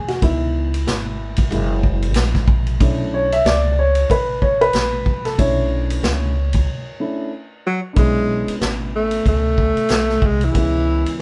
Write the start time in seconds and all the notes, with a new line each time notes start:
Already playing: E2 G#4
0.08 F#4, snare, ride
0.22 C#2 E3 B3 D#4 E4, kick, ride
0.74 ride
0.87 G#1, snare, hi-hat pedal, ride
1.36 kick, ride
1.51 F#1 G#3 A#3 E4, ride
1.83 kick
2.02 ride
2.14 A#1, snare, hi-hat pedal, ride
2.35 kick, snare
2.48 kick
2.67 ride
2.80 B1 A3 C#4 D4 E4, kick, ride
3.14 C#5
3.32 E5, ride
3.45 C#2 D5, snare, hi-hat pedal, ride
3.72 D5
3.79 C#5
3.95 ride
4.10 A1 B4, kick, ride
4.42 C#5, kick
4.61 B4, ride
4.73 A#1, snare, hi-hat pedal, ride
5.06 kick
5.25 A4, snare, ride
5.38 B1 A3 C#4 D4 E4 C#5, kick, ride
5.90 ride
6.03 C#2, snare, hi-hat pedal, ride
6.53 kick, ride
7.00 A3 C#4 D4 E4
7.66 F#3
7.93 B1 B3 D4, kick, ride
7.97 G#3 C#4 E4
8.48 muted upright bass stroke, ride
8.61 A1, snare, hi-hat pedal, ride
8.95 A3
9.11 ride
9.25 C#2 A3, kick, ride
9.58 kick
9.77 muted upright bass stroke, ride
9.89 B1, snare, hi-hat pedal, ride
10.09 snare
10.22 C2 G#3, kick
10.41 E3, ride
10.52 C#2 C#3 G#3 B3, kick, ride
10.58 E4
11.06 muted upright bass stroke, ride